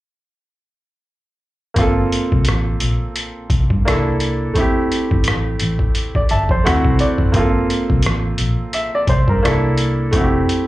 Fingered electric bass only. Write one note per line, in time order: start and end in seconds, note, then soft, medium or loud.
1.77 2.05 G1 medium
2.33 2.44 C2 medium
2.48 2.75 A1 medium
2.83 2.98 A#1 medium
3.51 3.67 C2 medium
3.71 3.83 G2 medium
3.87 4.56 C2 medium
4.56 4.84 F1 medium
5.12 5.27 G1 medium
5.27 5.54 A1 medium
5.62 5.77 A1 medium
6.31 6.47 G1 medium
6.50 6.62 F2 medium
6.66 6.82 D2 medium
6.85 6.97 C2 medium
7.20 7.35 F#1 medium
7.35 7.63 G1 medium
7.91 8.02 C2 medium
8.05 8.33 A1 medium
8.40 8.56 A#1 medium
9.08 9.25 C2 medium
9.29 9.41 G2 medium
9.45 10.15 C2 medium
10.14 10.42 F1 medium